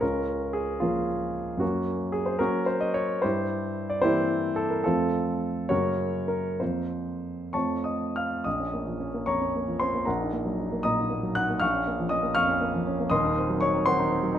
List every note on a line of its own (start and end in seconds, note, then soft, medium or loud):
0.01 0.80 C#2 soft
0.01 0.52 C#4 medium
0.01 0.52 F4 soft
0.01 0.55 A#4 medium
0.53 0.81 G#4 medium
0.80 1.57 F3 soft
0.80 1.06 A#3 medium
0.80 1.06 C#4 soft
0.80 1.07 F4 medium
1.57 2.37 F#2 medium
1.57 2.10 A#3 medium
1.57 2.10 C#4 medium
1.57 2.13 F#4 medium
2.12 2.27 G#4 medium
2.26 2.40 C5 medium
2.39 3.20 F#3 soft
2.39 3.20 A#3 soft
2.39 2.66 C#4 medium
2.39 2.66 F#4 medium
2.39 2.67 A#4 medium
2.66 2.81 C5 medium
2.80 2.95 D#5 medium
2.94 3.23 C#5 medium
3.22 4.02 G2 medium
3.22 3.87 E4 medium
3.22 3.87 G4 medium
3.22 3.90 C5 medium
3.90 4.04 D5 medium
4.02 4.81 E3 soft
4.02 4.81 A#3 soft
4.02 4.81 C4 medium
4.02 4.54 E4 medium
4.02 4.54 G4 medium
4.02 4.57 C5 medium
4.56 4.71 A4 medium
4.70 4.84 A#4 medium
4.84 5.68 F2 medium
4.84 5.66 F3 soft
4.84 5.67 A3 soft
4.84 5.66 C4 medium
4.84 5.66 F4 medium
4.84 5.69 A4 medium
5.69 6.58 F#2 medium
5.69 6.57 C#3 soft
5.69 6.57 A#3 soft
5.69 6.26 F#4 medium
5.69 6.26 A#4 medium
5.69 6.29 C#5 medium
6.28 6.60 A#4 medium
6.60 7.51 F2 soft
6.60 7.50 F3 soft
6.60 7.50 A#3 soft
6.60 7.50 C4 soft
6.60 7.49 F4 soft
6.60 7.53 C5 medium
7.53 8.43 F2 soft
7.53 8.42 F3 soft
7.53 8.42 A3 soft
7.53 8.43 C4 soft
7.53 7.83 C#5 soft
7.53 7.83 A5 medium
7.53 7.85 C#6 medium
7.84 8.14 D#5 soft
7.84 8.16 D#6 medium
8.16 8.44 F5 medium
8.16 8.45 F6 medium
8.44 10.04 A#1 medium
8.44 9.24 D#5 medium
8.44 9.27 D#6 medium
8.60 8.81 C#4 soft
8.73 8.95 A#3 soft
8.87 9.09 F3 soft
9.00 9.22 C#4 soft
9.14 9.36 A#3 soft
9.26 9.49 F2 soft
9.26 9.78 C#5 medium
9.26 9.78 A#5 medium
9.26 9.81 C#6 medium
9.41 9.63 C#4 soft
9.56 9.77 A#3 soft
9.68 9.89 F3 soft
9.80 10.03 C#4 soft
9.80 10.06 C5 medium
9.80 10.07 C6 medium
9.95 10.08 A#3 soft
10.05 11.58 A#1 medium
10.05 10.81 A#4 medium
10.05 10.81 F#5 medium
10.05 10.83 A#5 medium
10.20 10.41 D#4 soft
10.33 10.54 A#3 soft
10.45 10.67 F#3 soft
10.59 10.80 D#4 soft
10.72 10.93 A#3 soft
10.83 11.07 A#2 soft
10.83 11.10 D#5 medium
10.83 11.10 A#5 medium
10.83 11.11 D#6 medium
10.99 11.20 D#4 soft
11.10 11.32 A#3 soft
11.23 11.44 F#3 soft
11.35 11.57 D#4 medium
11.35 11.60 F#5 medium
11.35 11.62 F#6 medium
11.50 11.62 A#3 soft
11.60 13.08 A#1 medium
11.60 12.08 F5 medium
11.60 12.08 C#6 medium
11.60 12.11 F6 medium
11.73 11.94 C#4 soft
11.87 12.07 A#3 soft
11.99 12.19 F3 soft
12.09 12.31 C#4 soft
12.09 12.34 D#5 medium
12.09 12.36 D#6 medium
12.23 12.44 A#3 soft
12.35 12.57 F2 medium
12.35 13.07 F5 medium
12.35 13.07 C#6 medium
12.35 13.11 F6 loud
12.48 12.69 C#4 medium
12.61 12.82 A#3 soft
12.74 12.95 F3 medium
12.87 13.07 C#4 medium
13.00 13.12 A#3 medium
13.10 14.39 D#1 medium
13.10 14.39 D#2 medium
13.10 13.58 D#5 medium
13.10 13.58 C6 medium
13.10 13.60 D#6 medium
13.24 13.44 D#4 medium
13.38 13.57 C4 medium
13.50 13.70 F#3 medium
13.61 13.82 D#4 medium
13.61 13.85 C#5 medium
13.61 13.86 C#6 medium
13.74 13.94 C4 soft
13.86 14.07 D#3 medium
13.86 14.33 C5 medium
13.86 14.33 F#5 medium
13.86 14.35 C6 loud
14.00 14.19 D#4 medium
14.11 14.31 C4 medium
14.23 14.39 F#3 medium
14.35 14.39 D#4 medium